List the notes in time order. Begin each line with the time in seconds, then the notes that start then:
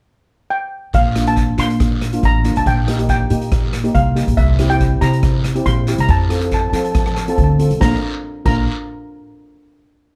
0.50 G5
0.93 A#1 F5, kick, closed hi-hat, long guiro
1.16 A#3 D4 F4, cross-stick, closed hi-hat
1.27 A#3 D4 F4 A5, closed hi-hat
1.36 kick, closed hi-hat, short guiro
1.58 A#2 A#3 D4 F4 C6, closed hi-hat, short guiro
1.70 closed hi-hat
1.80 kick, cross-stick, closed hi-hat, long guiro
2.01 cross-stick, closed hi-hat, short guiro
2.13 A#3 D4 F4, closed hi-hat
2.23 A1 A#5, kick, closed hi-hat
2.44 A#3 D4 F4, closed hi-hat, short guiro
2.56 A#1 A5, closed hi-hat
2.66 A#1 G5, kick, closed hi-hat, long guiro
2.87 A#3 D#4 G4, cross-stick, closed hi-hat
2.98 A#3 D#4 G4, closed hi-hat
3.09 G5, kick, closed hi-hat, short guiro
3.30 A#2 A#3 D#4 G4, closed hi-hat
3.42 closed hi-hat
3.52 kick, cross-stick, closed hi-hat, long guiro
3.73 cross-stick, closed hi-hat, short guiro
3.84 A#3 D#4 G4, closed hi-hat
3.95 C2 F5, kick, closed hi-hat
4.15 A#3 D#4 G4, closed hi-hat, short guiro
4.27 A#1, closed hi-hat
4.37 C2 E5, kick, closed hi-hat, long guiro
4.59 C4 E4 G4, cross-stick, closed hi-hat
4.70 C4 E4 G4 G5, closed hi-hat
4.80 kick, closed hi-hat, short guiro
5.01 C3 C4 E4 G4 A#5, closed hi-hat, short guiro
5.13 closed hi-hat
5.23 kick, cross-stick, closed hi-hat, long guiro
5.44 cross-stick, closed hi-hat, short guiro
5.55 C4 E4 G4, closed hi-hat
5.66 A#1 C6, kick, closed hi-hat
5.87 C4 E4 G4, closed hi-hat, short guiro
5.98 C2 A#5, closed hi-hat
6.08 F2 A5, kick, closed hi-hat, long guiro
6.29 C4 F4 A4, cross-stick, closed hi-hat
6.40 C4 F4 A4, closed hi-hat
6.51 A5, kick, closed hi-hat, short guiro
6.61 A5
6.70 F3 C4 F4 A4 A5, closed hi-hat, short guiro
6.77 A5
6.85 A5, closed hi-hat
6.92 A5, kick, cross-stick, closed hi-hat, long guiro
6.99 A5
7.06 A5, cross-stick
7.14 A5, cross-stick, closed hi-hat, short guiro
7.22 A5
7.28 C4 F4 A4 A5, closed hi-hat
7.36 D2 A5, kick, closed hi-hat
7.44 A5
7.59 C4 F4 A4, closed hi-hat
7.71 C2, closed hi-hat
7.80 A#1 D4 F4 A#4 A#5, kick, snare, long guiro
8.45 A#1 D4 F4 A#4 A#5, kick, crash, long guiro